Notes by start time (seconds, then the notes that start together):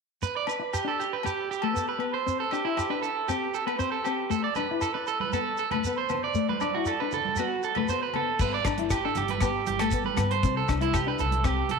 0.22 B4, muted clean electric guitar stroke, shekere
0.36 D5
0.47 B4, muted clean electric guitar stroke, low agogo, shekere
0.60 muted clean electric guitar stroke
0.73 G4, low agogo, shekere
0.84 D4 A4
1.00 G4, shekere
1.13 B4
1.23 G4, muted clean electric guitar stroke, low agogo, shekere
1.51 G4, shekere
1.62 A3 A4, low agogo
1.74 B3, shekere
1.89 B4
1.99 B3, low agogo
2.14 C5
2.26 C4, shekere
2.40 A4
2.51 D4 G4, low agogo, shekere
2.65 E4
2.77 G4, low agogo, shekere
2.90 D4 B4
3.02 A4, shekere
3.28 C4 G4, low agogo, shekere
3.54 A4, shekere
3.67 B3 B4, low agogo
3.79 C4 C5, shekere
3.92 A4
4.04 C4 G4, low agogo, shekere
4.30 A3 A4, shekere
4.44 D5
4.55 D4 B4, high conga, low agogo, shekere
4.71 E4
4.81 A4, low agogo, shekere
4.94 B4, muted clean electric guitar stroke
5.07 A4, shekere
5.20 B4, high conga
5.33 B3 A4, low agogo, shekere
5.57 A4, shekere
5.71 A3 B4, high conga, low conga, low agogo
5.84 B3, shekere
5.98 C5
6.09 B3, low conga, low agogo, shekere
6.24 D5
6.34 A3, shekere
6.49 B4, high conga
6.61 D4 D5, high conga, low agogo, shekere
6.74 E4 F#4
6.86 A4, low agogo, shekere
7.00 D4 B4
7.12 A4, low conga, shekere
7.25 high conga
7.36 B3 F#4, low agogo, shekere
7.63 A4, shekere
7.75 A3 B4, high conga, low conga, low agogo
7.88 B3 C5, shekere
8.03 B4
8.13 B3 A4, low conga, low agogo
8.39 G1 B3 B4, kick, crash, shekere
8.54 D5
8.65 G1 D4, muted clean electric guitar stroke, kick, cross-stick, closed hi-hat, low agogo, shekere
8.78 E4, closed hi-hat, high conga
8.90 G4, kick, cross-stick, closed hi-hat, low agogo, shekere
9.05 D4 A4
9.15 G1 G4, closed hi-hat, low conga, shekere
9.28 B4, closed hi-hat, high conga
9.40 B3 G4, kick, cross-stick, closed hi-hat, low agogo, shekere
9.66 G1 G4, closed hi-hat, high conga, shekere
9.79 A3 A4, cross-stick, closed hi-hat, low agogo
9.91 B3, kick, closed hi-hat, shekere
10.04 B4, high conga
10.17 G2 B3, cross-stick, closed hi-hat, high conga, low conga, low agogo, shekere
10.31 C5, closed hi-hat
10.43 C2 C4, kick, closed hi-hat, shekere
10.57 A4
10.68 C2 D4, muted clean electric guitar stroke, kick, cross-stick, closed hi-hat, low agogo, shekere
10.81 E4, closed hi-hat, high conga
10.94 G4, kick, cross-stick, closed hi-hat, low agogo, shekere
11.07 D4 B4
11.18 C2 A4, closed hi-hat, low conga, shekere
11.31 closed hi-hat, high conga
11.44 C4 G4, kick, cross-stick, closed hi-hat, low agogo, shekere
11.69 C2 A4, closed hi-hat, high conga